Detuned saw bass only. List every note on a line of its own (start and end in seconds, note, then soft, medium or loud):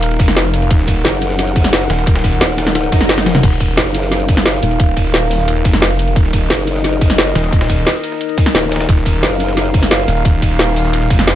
0.00 0.18 D#1 loud
0.20 0.69 F1 loud
0.71 0.86 D#1 loud
0.88 1.03 D#1 loud
1.90 2.23 D#1 loud
2.24 2.40 D#1 loud
3.43 3.59 D#1 medium
3.60 3.76 D#1 loud
4.63 4.95 D#1 loud
4.97 5.12 D#1 loud
5.14 5.64 D#1 loud
5.65 6.15 F1 loud
6.16 6.32 D#1 loud
6.33 6.49 D#1 loud
7.35 7.68 D#1 loud
7.70 7.85 D#1 loud
8.89 9.05 D#1 medium
9.06 9.22 D#1 loud
10.08 10.41 D#1 loud
10.42 10.58 D#1 loud
10.59 11.09 D#1 loud
11.10 11.35 F1 loud